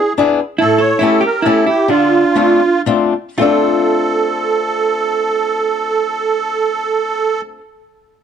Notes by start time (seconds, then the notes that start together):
Already playing: E4 G#4
0.18 B3 D4 E4 G#4
0.58 A2 E4 A4
0.78 A4 C#5
0.99 A3 C#4 E4 G4 A4
1.21 G4
1.26 A#4
1.42 A3 C#4 E4 A4
1.46 G4
1.66 E4 G4
1.88 D3 D4 F4
2.35 A3 C4 D4 F4
2.86 A3 C4 D4 F4
3.38 A3 C4 D4 F4 A4
3.42 F4